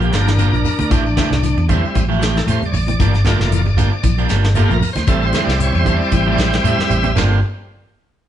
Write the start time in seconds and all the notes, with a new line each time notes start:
0.00 F3 A#3 G4, closed hi-hat, shekere
0.11 G1 F3 A#3 D4 G4, snare, closed hi-hat, shekere
0.15 D4 A#4
0.26 E3, snare, closed hi-hat, shekere
0.38 F3 A#3 D4 G4, closed hi-hat, high conga, claves, shekere
0.52 A#1 F3, muted clean electric guitar stroke, closed hi-hat, shekere
0.64 muted clean electric guitar stroke, open hi-hat, low conga, shekere
0.79 D2 D3, muted clean electric guitar stroke, closed hi-hat, high conga, claves, shekere
0.90 A1 E3 A3 C4 G4, kick, closed hi-hat, shekere
1.05 muted clean electric guitar stroke, shekere
1.17 D3 E3 A3 C4 G4, kick, snare, closed hi-hat, high conga, claves, shekere
1.31 C2, muted clean electric guitar stroke, snare, low conga
1.43 E3, snare, closed hi-hat, high conga, shekere
1.57 E2, muted clean electric guitar stroke, high conga, claves, shekere
1.69 D3 E3 G3 A3 C4 E4 G4, kick, closed hi-hat, low conga, shekere
1.83 muted clean electric guitar stroke, shekere
1.95 A1 E3, muted clean electric guitar stroke, kick, closed hi-hat, claves, shekere
2.08 E3 F3 A3 C4 G4, shekere
2.19 E3 A3 C4 F#4 G4, snare, closed hi-hat, shekere
2.23 G4
2.35 E3 A4, snare, closed hi-hat, shekere
2.47 A2 A3 C4 G4 C5, closed hi-hat, high conga, claves, shekere
2.61 G3, muted clean electric guitar stroke, closed hi-hat, high conga, shekere
2.65 D5
2.72 A1 C#5, muted clean electric guitar stroke, open hi-hat, low conga, shekere
2.76 D5
2.87 E3, muted clean electric guitar stroke, closed hi-hat, high conga, claves, shekere
2.99 G1 E3 F3 A#3 D4 G4, kick, closed hi-hat, high conga, shekere
3.14 muted clean electric guitar stroke, snare, closed hi-hat, shekere
3.25 D3 F3 A3 A#3 D4 F4 G4, kick, snare, closed hi-hat, high conga, claves, shekere
3.39 F1, muted clean electric guitar stroke, snare, low conga, shekere
3.51 E3, closed hi-hat, high conga, shekere
3.65 G1, muted clean electric guitar stroke, high conga, claves, shekere
3.76 D3 F3 A#3 D4 G4, kick, closed hi-hat, low conga, shekere
3.91 muted clean electric guitar stroke
4.03 A#1 E3, muted clean electric guitar stroke, kick, closed hi-hat, claves, shekere
4.18 F3 A#3 D4 G4, closed hi-hat, shekere
4.29 G1 F3 A#3 D4 G4, snare, closed hi-hat, shekere
4.43 muted clean electric guitar stroke, snare, closed hi-hat, shekere
4.54 F3 A3 A#3 D4 F4 G4, closed hi-hat, high conga, claves, shekere
4.69 A#1 F3, muted clean electric guitar stroke, closed hi-hat, high conga, shekere
4.74 A#4
4.81 muted clean electric guitar stroke, open hi-hat, low conga, shekere
4.93 D2 C5, muted clean electric guitar stroke, closed hi-hat, high conga, shekere
4.97 snare, claves
5.07 A1 C3 E3 G3 A3 C4 E4 G4 A4, kick, closed hi-hat, shekere
5.22 muted clean electric guitar stroke, shekere
5.27 C5
5.33 D3 E3 A3 C4 G4, snare, closed hi-hat, high conga, claves, shekere
5.45 C2 D5, shekere
5.49 muted clean electric guitar stroke, snare
5.59 C#5, closed hi-hat, high conga, shekere
5.73 E2, muted clean electric guitar stroke, high conga, claves, shekere
5.79 C5
5.85 D3 A3 C4 G4, kick, closed hi-hat, high conga, low conga, shekere
5.96 D5
6.01 muted clean electric guitar stroke, shekere
6.11 A1 E3 G5, muted clean electric guitar stroke, kick, closed hi-hat, high conga, claves, shekere
6.26 E3 F3 A3 C4 G4, shekere
6.32 D5
6.37 E3 C4 G4, kick, snare, closed hi-hat, shekere
6.49 G5, muted clean electric guitar stroke, closed hi-hat, shekere
6.53 snare
6.63 A2 E3 A3 C4 G4 E5, closed hi-hat, high conga, claves, shekere
6.78 G3, muted clean electric guitar stroke, snare, closed hi-hat, high conga, shekere
6.89 A1, muted clean electric guitar stroke, closed hi-hat, low conga, shekere
7.04 E3, muted clean electric guitar stroke, closed hi-hat, high conga, claves, shekere
7.15 G1 G2 D3 F3 G3 A#3 C4 D4 F4 G4, snare, low conga, claves, shekere